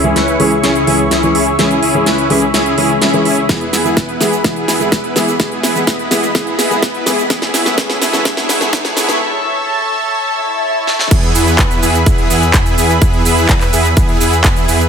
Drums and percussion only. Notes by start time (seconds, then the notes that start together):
0.16 snare, closed hi-hat
0.28 closed hi-hat
0.40 open hi-hat
0.52 closed hi-hat
0.64 snare, closed hi-hat
0.75 closed hi-hat
0.87 open hi-hat
0.99 closed hi-hat
1.11 snare, closed hi-hat
1.23 closed hi-hat
1.35 open hi-hat
1.59 snare, closed hi-hat
1.71 closed hi-hat
1.83 open hi-hat
2.06 snare, closed hi-hat
2.18 closed hi-hat
2.30 open hi-hat
2.42 closed hi-hat
2.54 snare, closed hi-hat
2.66 closed hi-hat
2.78 open hi-hat
2.90 closed hi-hat
3.02 snare, closed hi-hat
3.13 closed hi-hat
3.25 open hi-hat
3.37 closed hi-hat
3.49 kick, snare, closed hi-hat, shaker
3.61 closed hi-hat
3.73 snare, open hi-hat, shaker
3.85 closed hi-hat, shaker
3.97 kick, snare, closed hi-hat, shaker
4.09 closed hi-hat
4.21 snare, open hi-hat, shaker
4.33 closed hi-hat, shaker
4.44 kick, snare, closed hi-hat, shaker
4.56 closed hi-hat
4.68 snare, open hi-hat, shaker
4.80 closed hi-hat, shaker
4.92 kick, snare, closed hi-hat, shaker
5.04 closed hi-hat
5.16 snare, open hi-hat, shaker
5.28 closed hi-hat, shaker
5.40 kick, snare, closed hi-hat, shaker
5.52 closed hi-hat
5.63 snare, open hi-hat, shaker
5.75 closed hi-hat, shaker
5.87 kick, snare, closed hi-hat, shaker
5.99 closed hi-hat
6.11 snare, open hi-hat, shaker
6.23 closed hi-hat, shaker
6.35 kick, snare, closed hi-hat, shaker
6.47 closed hi-hat
6.59 snare, open hi-hat, shaker
6.71 closed hi-hat, shaker
6.82 kick, snare, closed hi-hat, shaker
6.94 closed hi-hat
7.06 snare, open hi-hat, shaker
7.18 closed hi-hat, shaker
7.30 kick, snare, closed hi-hat, shaker
7.42 snare, closed hi-hat
7.54 snare, open hi-hat, shaker
7.66 snare, closed hi-hat, shaker
7.78 kick, snare, closed hi-hat, shaker
7.90 snare, closed hi-hat
8.01 snare, open hi-hat, shaker
8.13 snare, closed hi-hat, shaker
8.25 kick, snare, closed hi-hat, shaker
8.37 snare, closed hi-hat
8.49 snare, open hi-hat, shaker
8.61 snare, shaker
8.73 kick, snare, closed hi-hat, shaker
8.85 snare, closed hi-hat
8.97 snare, open hi-hat, shaker
9.09 snare, closed hi-hat, shaker
10.87 snare
10.99 snare
11.11 kick, closed hi-hat, crash, shaker
11.23 closed hi-hat
11.35 open hi-hat, shaker
11.47 closed hi-hat, shaker
11.59 kick, clap, closed hi-hat, shaker
11.71 closed hi-hat, shaker
11.83 open hi-hat, shaker
11.94 closed hi-hat, shaker
12.06 kick, closed hi-hat, shaker
12.18 closed hi-hat
12.30 open hi-hat, shaker
12.42 closed hi-hat, shaker
12.54 kick, clap, closed hi-hat, shaker
12.66 closed hi-hat, shaker
12.78 open hi-hat, shaker
12.90 shaker
13.02 kick, closed hi-hat, shaker
13.13 closed hi-hat
13.25 open hi-hat, shaker
13.37 closed hi-hat, shaker
13.49 kick, clap, closed hi-hat, shaker
13.61 clap, closed hi-hat, shaker
13.73 open hi-hat, shaker
13.85 shaker
13.97 kick, closed hi-hat, shaker
14.09 closed hi-hat
14.20 open hi-hat, shaker
14.32 closed hi-hat, shaker
14.44 kick, clap, closed hi-hat, shaker
14.56 closed hi-hat, shaker
14.68 open hi-hat, shaker
14.80 closed hi-hat, shaker